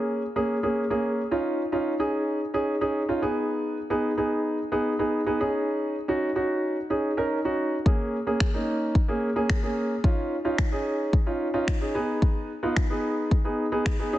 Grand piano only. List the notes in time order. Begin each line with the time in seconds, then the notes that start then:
Already playing: A#3 C#4 G#4
0.36 A#3 C#4 G#4
0.63 A#3 C#4 G#4
0.90 A#3 C#4 G#4
1.31 C#4 D#4 F4
1.72 C#4 D#4 F4
1.99 C#4 D#4 G#4
2.54 C#4 D#4 G#4
2.81 C#4 D#4 G#4
3.08 C#4 D#4 F4
3.22 B3 D#4 G#4
3.90 B3 D#4 G#4
4.17 B3 D#4 G#4
4.72 B3 D#4 G#4
4.99 B3 D#4 G#4
5.26 B3 D#4 G#4
5.40 C#4 D#4 G#4
6.08 C#4 D#4 F#4
6.35 C#4 D#4 F#4
6.90 C#4 D#4 G#4
7.17 C#4 D#4 A#4
7.45 C#4 D#4 F#4
7.86 A#3 C#4 G#4
8.27 A#3 C#4 G#4
8.54 A#3 C#4 D#4
9.08 A#3 C#4 G#4
9.36 A#3 C#4 G#4
9.63 A#3 C#4 G#4
10.04 C#4 D#4 F4
10.45 C#4 D#4 F4
10.72 C#4 D#4 G#4
11.26 C#4 D#4 F4
11.54 C#4 D#4 F4
11.81 C#4 D#4 G#4
11.95 B3 D#4 G#4
12.63 B3 D#4 F4
12.90 B3 D#4 G#4
13.45 B3 D#4 G#4
13.72 B3 D#4 G#4
13.99 B3 D#4 G#4
14.13 C#4 D#4 G#4